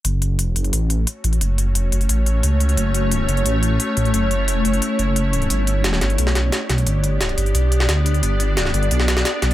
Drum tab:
HH |x-x-x-xxx-x-x-xx|x-x-x-xxx-x-x-xx|x-x-x-xxx-x-x-xx|x-x-x-xxx-x-x-xx|
SD |----------------|----------------|----------------|----------------|

HH |x-x-x-xxx-x-x-xx|x-x-xxxxx-x-x-xx|x-x-x-xxx-xxx-xx|
SD |----ooo--oo-o-o-|----o------oo---|----oo---oooo-o-|